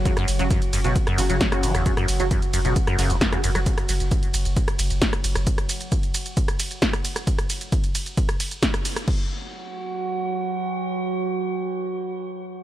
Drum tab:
CC |----------------|----------------|----------------|----------------|
RD |x-x-x-x-x-x-x-x-|x-x-x-x-x-x-x-x-|x-x-x-x-x-x-x-x-|x-x-x-x-x-x-x-x-|
HH |xxoxxxoxxxoxxxox|xxoxxxoxxxoxxxox|xxoxxxoxxxoxxxox|xxoxxxoxxxoxxxox|
SH |xxxxxxxxxxxxxxxx|xxxxxxxxxxxxxxxx|xxxxxxxxxxxxxxxx|xxxxxxxxxxxxxxxx|
SD |-r-------r--or-r|-r-------r--or-r|-r-------r--or-r|-r-------r--or-r|
BD |o---o---o---o---|o---o---o---o---|o---o---o---o---|o---o---o---o---|

CC |----------------|x---------------|----------------|
RD |x-x-x-x-x-x-x-x-|----------------|----------------|
HH |xxoxxxoxxxoxxxox|----------------|----------------|
SH |xxxxxxxxxxxxxxxx|----------------|----------------|
SD |-r-------r--or-r|----------------|----------------|
BD |o---o---o---o---|o---------------|----------------|